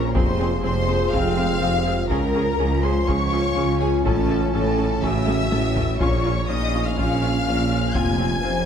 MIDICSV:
0, 0, Header, 1, 12, 480
1, 0, Start_track
1, 0, Key_signature, -5, "minor"
1, 0, Tempo, 487805
1, 144, Time_signature, 4, 2, 24, 8
1, 8517, End_track
2, 0, Start_track
2, 0, Title_t, "Violin section"
2, 0, Program_c, 0, 48
2, 0, Note_on_c, 0, 82, 93
2, 135, Note_on_c, 0, 84, 96
2, 142, Note_off_c, 0, 82, 0
2, 609, Note_off_c, 0, 84, 0
2, 621, Note_on_c, 0, 84, 106
2, 1093, Note_off_c, 0, 84, 0
2, 1108, Note_on_c, 0, 89, 105
2, 2059, Note_on_c, 0, 82, 98
2, 2066, Note_off_c, 0, 89, 0
2, 2767, Note_off_c, 0, 82, 0
2, 2787, Note_on_c, 0, 84, 97
2, 3025, Note_off_c, 0, 84, 0
2, 3029, Note_on_c, 0, 85, 122
2, 3747, Note_off_c, 0, 85, 0
2, 3747, Note_on_c, 0, 80, 95
2, 3980, Note_off_c, 0, 80, 0
2, 3993, Note_on_c, 0, 81, 92
2, 4449, Note_off_c, 0, 81, 0
2, 4461, Note_on_c, 0, 81, 99
2, 4933, Note_off_c, 0, 81, 0
2, 4947, Note_on_c, 0, 88, 108
2, 5901, Note_on_c, 0, 85, 99
2, 5906, Note_off_c, 0, 88, 0
2, 6373, Note_off_c, 0, 85, 0
2, 6378, Note_on_c, 0, 87, 108
2, 6734, Note_off_c, 0, 87, 0
2, 6737, Note_on_c, 0, 89, 104
2, 6846, Note_off_c, 0, 89, 0
2, 6858, Note_on_c, 0, 89, 124
2, 7802, Note_off_c, 0, 89, 0
2, 7821, Note_on_c, 0, 92, 104
2, 8517, Note_off_c, 0, 92, 0
2, 8517, End_track
3, 0, Start_track
3, 0, Title_t, "Violin section"
3, 0, Program_c, 1, 48
3, 0, Note_on_c, 1, 70, 75
3, 140, Note_off_c, 1, 70, 0
3, 147, Note_on_c, 1, 72, 88
3, 612, Note_off_c, 1, 72, 0
3, 624, Note_on_c, 1, 72, 109
3, 1094, Note_off_c, 1, 72, 0
3, 1102, Note_on_c, 1, 77, 109
3, 2063, Note_off_c, 1, 77, 0
3, 2063, Note_on_c, 1, 70, 95
3, 2769, Note_off_c, 1, 70, 0
3, 2795, Note_on_c, 1, 72, 76
3, 3025, Note_off_c, 1, 72, 0
3, 3027, Note_on_c, 1, 73, 91
3, 3746, Note_off_c, 1, 73, 0
3, 3762, Note_on_c, 1, 68, 74
3, 3993, Note_off_c, 1, 68, 0
3, 3998, Note_on_c, 1, 69, 79
3, 4459, Note_off_c, 1, 69, 0
3, 4471, Note_on_c, 1, 69, 83
3, 4938, Note_off_c, 1, 69, 0
3, 4954, Note_on_c, 1, 76, 104
3, 5909, Note_off_c, 1, 76, 0
3, 5912, Note_on_c, 1, 73, 90
3, 6379, Note_off_c, 1, 73, 0
3, 6393, Note_on_c, 1, 75, 104
3, 6748, Note_off_c, 1, 75, 0
3, 6754, Note_on_c, 1, 77, 74
3, 6853, Note_off_c, 1, 77, 0
3, 6865, Note_on_c, 1, 77, 102
3, 7805, Note_off_c, 1, 77, 0
3, 7827, Note_on_c, 1, 80, 100
3, 8517, Note_off_c, 1, 80, 0
3, 8517, End_track
4, 0, Start_track
4, 0, Title_t, "French horn section"
4, 0, Program_c, 2, 60
4, 0, Note_on_c, 2, 65, 89
4, 101, Note_off_c, 2, 65, 0
4, 151, Note_on_c, 2, 68, 112
4, 1559, Note_off_c, 2, 68, 0
4, 1582, Note_on_c, 2, 72, 82
4, 2060, Note_on_c, 2, 70, 96
4, 2063, Note_off_c, 2, 72, 0
4, 2532, Note_off_c, 2, 70, 0
4, 2538, Note_on_c, 2, 65, 107
4, 4461, Note_off_c, 2, 65, 0
4, 4476, Note_on_c, 2, 69, 94
4, 4950, Note_off_c, 2, 69, 0
4, 4951, Note_on_c, 2, 66, 89
4, 5907, Note_off_c, 2, 66, 0
4, 5915, Note_on_c, 2, 65, 74
4, 6241, Note_off_c, 2, 65, 0
4, 6383, Note_on_c, 2, 63, 86
4, 6854, Note_off_c, 2, 63, 0
4, 6857, Note_on_c, 2, 61, 78
4, 7814, Note_on_c, 2, 65, 89
4, 7821, Note_off_c, 2, 61, 0
4, 8289, Note_off_c, 2, 65, 0
4, 8299, Note_on_c, 2, 72, 95
4, 8517, Note_off_c, 2, 72, 0
4, 8517, End_track
5, 0, Start_track
5, 0, Title_t, "Viola section"
5, 0, Program_c, 3, 48
5, 140, Note_on_c, 3, 68, 78
5, 142, Note_on_c, 3, 60, 82
5, 219, Note_off_c, 3, 68, 0
5, 221, Note_off_c, 3, 60, 0
5, 384, Note_on_c, 3, 68, 71
5, 385, Note_on_c, 3, 60, 76
5, 463, Note_off_c, 3, 60, 0
5, 463, Note_off_c, 3, 68, 0
5, 617, Note_on_c, 3, 68, 63
5, 623, Note_on_c, 3, 60, 73
5, 696, Note_off_c, 3, 68, 0
5, 702, Note_off_c, 3, 60, 0
5, 860, Note_on_c, 3, 60, 60
5, 860, Note_on_c, 3, 68, 69
5, 939, Note_off_c, 3, 60, 0
5, 939, Note_off_c, 3, 68, 0
5, 1101, Note_on_c, 3, 68, 70
5, 1102, Note_on_c, 3, 60, 71
5, 1180, Note_off_c, 3, 68, 0
5, 1181, Note_off_c, 3, 60, 0
5, 1342, Note_on_c, 3, 60, 67
5, 1343, Note_on_c, 3, 68, 67
5, 1420, Note_off_c, 3, 60, 0
5, 1422, Note_off_c, 3, 68, 0
5, 1586, Note_on_c, 3, 60, 67
5, 1586, Note_on_c, 3, 68, 60
5, 1665, Note_off_c, 3, 60, 0
5, 1665, Note_off_c, 3, 68, 0
5, 1825, Note_on_c, 3, 60, 60
5, 1827, Note_on_c, 3, 68, 66
5, 1903, Note_off_c, 3, 60, 0
5, 1906, Note_off_c, 3, 68, 0
5, 2070, Note_on_c, 3, 61, 82
5, 2071, Note_on_c, 3, 68, 81
5, 2149, Note_off_c, 3, 61, 0
5, 2150, Note_off_c, 3, 68, 0
5, 2314, Note_on_c, 3, 61, 72
5, 2315, Note_on_c, 3, 68, 73
5, 2392, Note_off_c, 3, 61, 0
5, 2393, Note_off_c, 3, 68, 0
5, 2547, Note_on_c, 3, 68, 67
5, 2548, Note_on_c, 3, 61, 67
5, 2626, Note_off_c, 3, 61, 0
5, 2626, Note_off_c, 3, 68, 0
5, 2784, Note_on_c, 3, 68, 65
5, 2786, Note_on_c, 3, 61, 69
5, 2863, Note_off_c, 3, 68, 0
5, 2864, Note_off_c, 3, 61, 0
5, 3020, Note_on_c, 3, 68, 69
5, 3025, Note_on_c, 3, 61, 67
5, 3099, Note_off_c, 3, 68, 0
5, 3104, Note_off_c, 3, 61, 0
5, 3263, Note_on_c, 3, 61, 64
5, 3263, Note_on_c, 3, 68, 65
5, 3342, Note_off_c, 3, 61, 0
5, 3342, Note_off_c, 3, 68, 0
5, 3499, Note_on_c, 3, 68, 56
5, 3500, Note_on_c, 3, 61, 61
5, 3577, Note_off_c, 3, 68, 0
5, 3579, Note_off_c, 3, 61, 0
5, 3741, Note_on_c, 3, 61, 58
5, 3741, Note_on_c, 3, 68, 64
5, 3820, Note_off_c, 3, 61, 0
5, 3820, Note_off_c, 3, 68, 0
5, 3987, Note_on_c, 3, 61, 78
5, 3987, Note_on_c, 3, 69, 75
5, 4066, Note_off_c, 3, 61, 0
5, 4066, Note_off_c, 3, 69, 0
5, 4226, Note_on_c, 3, 61, 63
5, 4226, Note_on_c, 3, 69, 71
5, 4304, Note_off_c, 3, 69, 0
5, 4305, Note_off_c, 3, 61, 0
5, 4460, Note_on_c, 3, 69, 65
5, 4462, Note_on_c, 3, 61, 65
5, 4539, Note_off_c, 3, 69, 0
5, 4541, Note_off_c, 3, 61, 0
5, 4700, Note_on_c, 3, 61, 61
5, 4702, Note_on_c, 3, 69, 64
5, 4779, Note_off_c, 3, 61, 0
5, 4781, Note_off_c, 3, 69, 0
5, 4949, Note_on_c, 3, 69, 59
5, 4952, Note_on_c, 3, 61, 61
5, 5028, Note_off_c, 3, 69, 0
5, 5031, Note_off_c, 3, 61, 0
5, 5185, Note_on_c, 3, 69, 63
5, 5189, Note_on_c, 3, 61, 62
5, 5264, Note_off_c, 3, 69, 0
5, 5268, Note_off_c, 3, 61, 0
5, 5427, Note_on_c, 3, 69, 62
5, 5428, Note_on_c, 3, 61, 53
5, 5506, Note_off_c, 3, 61, 0
5, 5506, Note_off_c, 3, 69, 0
5, 5663, Note_on_c, 3, 69, 60
5, 5664, Note_on_c, 3, 61, 62
5, 5741, Note_off_c, 3, 69, 0
5, 5743, Note_off_c, 3, 61, 0
5, 5901, Note_on_c, 3, 61, 78
5, 5901, Note_on_c, 3, 65, 84
5, 5980, Note_off_c, 3, 61, 0
5, 5980, Note_off_c, 3, 65, 0
5, 6151, Note_on_c, 3, 65, 67
5, 6153, Note_on_c, 3, 61, 69
5, 6230, Note_off_c, 3, 65, 0
5, 6231, Note_off_c, 3, 61, 0
5, 6380, Note_on_c, 3, 61, 62
5, 6384, Note_on_c, 3, 65, 65
5, 6459, Note_off_c, 3, 61, 0
5, 6463, Note_off_c, 3, 65, 0
5, 6631, Note_on_c, 3, 65, 65
5, 6632, Note_on_c, 3, 61, 65
5, 6710, Note_off_c, 3, 61, 0
5, 6710, Note_off_c, 3, 65, 0
5, 6863, Note_on_c, 3, 65, 72
5, 6864, Note_on_c, 3, 61, 70
5, 6942, Note_off_c, 3, 61, 0
5, 6942, Note_off_c, 3, 65, 0
5, 7102, Note_on_c, 3, 65, 63
5, 7103, Note_on_c, 3, 61, 70
5, 7181, Note_off_c, 3, 61, 0
5, 7181, Note_off_c, 3, 65, 0
5, 7348, Note_on_c, 3, 61, 57
5, 7349, Note_on_c, 3, 65, 63
5, 7427, Note_off_c, 3, 61, 0
5, 7427, Note_off_c, 3, 65, 0
5, 7582, Note_on_c, 3, 61, 56
5, 7582, Note_on_c, 3, 65, 67
5, 7660, Note_off_c, 3, 61, 0
5, 7661, Note_off_c, 3, 65, 0
5, 7819, Note_on_c, 3, 65, 76
5, 7826, Note_on_c, 3, 60, 71
5, 7898, Note_off_c, 3, 65, 0
5, 7904, Note_off_c, 3, 60, 0
5, 8058, Note_on_c, 3, 60, 69
5, 8061, Note_on_c, 3, 65, 66
5, 8137, Note_off_c, 3, 60, 0
5, 8140, Note_off_c, 3, 65, 0
5, 8295, Note_on_c, 3, 60, 65
5, 8295, Note_on_c, 3, 65, 63
5, 8374, Note_off_c, 3, 60, 0
5, 8374, Note_off_c, 3, 65, 0
5, 8517, End_track
6, 0, Start_track
6, 0, Title_t, "Trombone section"
6, 0, Program_c, 4, 61
6, 0, Note_on_c, 4, 53, 103
6, 0, Note_on_c, 4, 61, 119
6, 108, Note_off_c, 4, 61, 0
6, 146, Note_on_c, 4, 60, 104
6, 2025, Note_off_c, 4, 60, 0
6, 2029, Note_off_c, 4, 53, 0
6, 2071, Note_on_c, 4, 61, 100
6, 2073, Note_on_c, 4, 53, 96
6, 3949, Note_off_c, 4, 53, 0
6, 3985, Note_on_c, 4, 49, 103
6, 5737, Note_off_c, 4, 49, 0
6, 5737, Note_off_c, 4, 61, 0
6, 5905, Note_on_c, 4, 53, 89
6, 5910, Note_on_c, 4, 61, 91
6, 7787, Note_off_c, 4, 61, 0
6, 7827, Note_on_c, 4, 60, 92
6, 8517, Note_off_c, 4, 53, 0
6, 8517, Note_off_c, 4, 60, 0
6, 8517, End_track
7, 0, Start_track
7, 0, Title_t, "Ambient pad"
7, 0, Program_c, 5, 92
7, 0, Note_on_c, 5, 53, 91
7, 0, Note_on_c, 5, 58, 95
7, 0, Note_on_c, 5, 65, 100
7, 100, Note_off_c, 5, 58, 0
7, 155, Note_on_c, 5, 56, 94
7, 159, Note_on_c, 5, 72, 78
7, 2018, Note_off_c, 5, 53, 0
7, 2058, Note_off_c, 5, 56, 0
7, 2070, Note_on_c, 5, 56, 93
7, 2071, Note_off_c, 5, 72, 0
7, 2072, Note_on_c, 5, 73, 91
7, 2075, Note_on_c, 5, 61, 94
7, 3939, Note_off_c, 5, 65, 0
7, 3983, Note_on_c, 5, 57, 77
7, 3987, Note_off_c, 5, 56, 0
7, 3987, Note_on_c, 5, 76, 80
7, 5872, Note_off_c, 5, 61, 0
7, 5884, Note_on_c, 5, 61, 72
7, 5888, Note_on_c, 5, 53, 72
7, 5891, Note_on_c, 5, 58, 77
7, 5903, Note_off_c, 5, 57, 0
7, 5905, Note_off_c, 5, 76, 0
7, 7814, Note_off_c, 5, 61, 0
7, 7817, Note_off_c, 5, 58, 0
7, 7824, Note_on_c, 5, 56, 80
7, 7825, Note_on_c, 5, 72, 72
7, 7826, Note_on_c, 5, 65, 72
7, 7828, Note_off_c, 5, 73, 0
7, 8517, Note_off_c, 5, 53, 0
7, 8517, Note_off_c, 5, 56, 0
7, 8517, Note_off_c, 5, 65, 0
7, 8517, Note_off_c, 5, 72, 0
7, 8517, End_track
8, 0, Start_track
8, 0, Title_t, "Cello section"
8, 0, Program_c, 6, 48
8, 142, Note_on_c, 6, 41, 96
8, 566, Note_off_c, 6, 41, 0
8, 622, Note_on_c, 6, 41, 86
8, 1046, Note_off_c, 6, 41, 0
8, 1104, Note_on_c, 6, 41, 86
8, 1527, Note_off_c, 6, 41, 0
8, 1586, Note_on_c, 6, 41, 75
8, 2008, Note_off_c, 6, 41, 0
8, 2072, Note_on_c, 6, 37, 86
8, 2491, Note_off_c, 6, 37, 0
8, 2548, Note_on_c, 6, 37, 88
8, 2969, Note_off_c, 6, 37, 0
8, 3027, Note_on_c, 6, 37, 81
8, 3449, Note_off_c, 6, 37, 0
8, 3502, Note_on_c, 6, 37, 83
8, 3926, Note_off_c, 6, 37, 0
8, 3978, Note_on_c, 6, 45, 83
8, 4404, Note_off_c, 6, 45, 0
8, 4457, Note_on_c, 6, 45, 87
8, 4884, Note_off_c, 6, 45, 0
8, 4932, Note_on_c, 6, 45, 79
8, 5361, Note_off_c, 6, 45, 0
8, 5421, Note_on_c, 6, 45, 76
8, 5846, Note_off_c, 6, 45, 0
8, 5904, Note_on_c, 6, 46, 86
8, 6328, Note_off_c, 6, 46, 0
8, 6379, Note_on_c, 6, 46, 85
8, 6805, Note_off_c, 6, 46, 0
8, 6861, Note_on_c, 6, 46, 78
8, 7286, Note_off_c, 6, 46, 0
8, 7338, Note_on_c, 6, 46, 73
8, 7764, Note_off_c, 6, 46, 0
8, 7825, Note_on_c, 6, 41, 86
8, 8248, Note_off_c, 6, 41, 0
8, 8299, Note_on_c, 6, 41, 79
8, 8517, Note_off_c, 6, 41, 0
8, 8517, End_track
9, 0, Start_track
9, 0, Title_t, "Sub bass"
9, 0, Program_c, 7, 38
9, 0, Note_on_c, 7, 34, 97
9, 151, Note_on_c, 7, 29, 93
9, 166, Note_off_c, 7, 34, 0
9, 2070, Note_on_c, 7, 37, 79
9, 2084, Note_off_c, 7, 29, 0
9, 3994, Note_on_c, 7, 33, 86
9, 4009, Note_off_c, 7, 37, 0
9, 5912, Note_on_c, 7, 34, 82
9, 5927, Note_off_c, 7, 33, 0
9, 7830, Note_on_c, 7, 29, 70
9, 7845, Note_off_c, 7, 34, 0
9, 8517, Note_off_c, 7, 29, 0
9, 8517, End_track
10, 0, Start_track
10, 0, Title_t, "Double bass section"
10, 0, Program_c, 8, 48
10, 151, Note_on_c, 8, 29, 89
10, 571, Note_off_c, 8, 29, 0
10, 635, Note_on_c, 8, 29, 84
10, 1053, Note_off_c, 8, 29, 0
10, 1112, Note_on_c, 8, 29, 92
10, 1531, Note_off_c, 8, 29, 0
10, 1590, Note_on_c, 8, 29, 88
10, 2010, Note_off_c, 8, 29, 0
10, 2075, Note_on_c, 8, 37, 91
10, 2493, Note_off_c, 8, 37, 0
10, 2551, Note_on_c, 8, 37, 84
10, 2971, Note_off_c, 8, 37, 0
10, 3033, Note_on_c, 8, 37, 85
10, 3452, Note_off_c, 8, 37, 0
10, 3512, Note_on_c, 8, 37, 90
10, 3931, Note_off_c, 8, 37, 0
10, 3989, Note_on_c, 8, 33, 85
10, 4410, Note_off_c, 8, 33, 0
10, 4465, Note_on_c, 8, 33, 78
10, 4888, Note_off_c, 8, 33, 0
10, 4944, Note_on_c, 8, 33, 82
10, 5367, Note_off_c, 8, 33, 0
10, 5426, Note_on_c, 8, 33, 78
10, 5848, Note_off_c, 8, 33, 0
10, 5908, Note_on_c, 8, 34, 90
10, 6329, Note_off_c, 8, 34, 0
10, 6389, Note_on_c, 8, 34, 84
10, 6810, Note_off_c, 8, 34, 0
10, 6865, Note_on_c, 8, 34, 85
10, 7288, Note_off_c, 8, 34, 0
10, 7346, Note_on_c, 8, 34, 86
10, 7768, Note_off_c, 8, 34, 0
10, 7833, Note_on_c, 8, 29, 74
10, 8252, Note_off_c, 8, 29, 0
10, 8310, Note_on_c, 8, 29, 75
10, 8517, Note_off_c, 8, 29, 0
10, 8517, End_track
11, 0, Start_track
11, 0, Title_t, "Tuba"
11, 0, Program_c, 10, 58
11, 150, Note_on_c, 10, 29, 85
11, 570, Note_off_c, 10, 29, 0
11, 630, Note_on_c, 10, 29, 80
11, 1050, Note_off_c, 10, 29, 0
11, 1113, Note_on_c, 10, 29, 93
11, 1532, Note_off_c, 10, 29, 0
11, 1593, Note_on_c, 10, 29, 91
11, 2012, Note_off_c, 10, 29, 0
11, 2071, Note_on_c, 10, 37, 84
11, 2491, Note_off_c, 10, 37, 0
11, 2553, Note_on_c, 10, 37, 71
11, 2972, Note_off_c, 10, 37, 0
11, 3034, Note_on_c, 10, 37, 85
11, 3452, Note_off_c, 10, 37, 0
11, 3514, Note_on_c, 10, 37, 79
11, 3932, Note_off_c, 10, 37, 0
11, 3994, Note_on_c, 10, 33, 85
11, 4412, Note_off_c, 10, 33, 0
11, 4474, Note_on_c, 10, 33, 85
11, 4820, Note_off_c, 10, 33, 0
11, 4945, Note_on_c, 10, 33, 83
11, 5368, Note_off_c, 10, 33, 0
11, 5430, Note_on_c, 10, 33, 80
11, 5850, Note_off_c, 10, 33, 0
11, 5909, Note_on_c, 10, 34, 85
11, 6330, Note_off_c, 10, 34, 0
11, 6388, Note_on_c, 10, 34, 73
11, 6810, Note_off_c, 10, 34, 0
11, 6869, Note_on_c, 10, 34, 86
11, 7290, Note_off_c, 10, 34, 0
11, 7345, Note_on_c, 10, 34, 88
11, 7768, Note_off_c, 10, 34, 0
11, 7834, Note_on_c, 10, 29, 75
11, 8252, Note_off_c, 10, 29, 0
11, 8312, Note_on_c, 10, 29, 80
11, 8517, Note_off_c, 10, 29, 0
11, 8517, End_track
12, 0, Start_track
12, 0, Title_t, "Taiko and cinematic ensemble drums"
12, 148, Note_on_c, 9, 41, 104
12, 247, Note_off_c, 9, 41, 0
12, 1113, Note_on_c, 9, 41, 79
12, 1212, Note_off_c, 9, 41, 0
12, 2073, Note_on_c, 9, 41, 91
12, 2172, Note_off_c, 9, 41, 0
12, 3034, Note_on_c, 9, 41, 82
12, 3133, Note_off_c, 9, 41, 0
12, 3995, Note_on_c, 9, 41, 98
12, 4093, Note_off_c, 9, 41, 0
12, 4951, Note_on_c, 9, 41, 75
12, 5049, Note_off_c, 9, 41, 0
12, 5195, Note_on_c, 9, 48, 81
12, 5294, Note_off_c, 9, 48, 0
12, 5433, Note_on_c, 9, 48, 94
12, 5532, Note_off_c, 9, 48, 0
12, 5669, Note_on_c, 9, 43, 97
12, 5767, Note_off_c, 9, 43, 0
12, 5909, Note_on_c, 9, 41, 102
12, 6008, Note_off_c, 9, 41, 0
12, 6868, Note_on_c, 9, 41, 82
12, 6967, Note_off_c, 9, 41, 0
12, 7824, Note_on_c, 9, 41, 93
12, 7923, Note_off_c, 9, 41, 0
12, 8517, End_track
0, 0, End_of_file